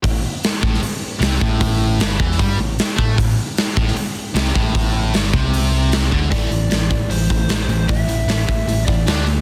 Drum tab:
HH |o---o---o---o---|o---o---o---o---|o---o---o---o---|o---o---o---o---|
SD |----o--o----o---|----o--o----o---|----o--o----o---|----o-------o---|
BD |o-----o-------o-|o-----o-o-----o-|o-----o-------o-|o-----o-------o-|

HH |o-o-o-o-o-o-o-o-|o-o-o-o-o-o-o-o-|
SD |----o-------o---|----o-------o---|
BD |o-----o---o-----|o-----o---o-----|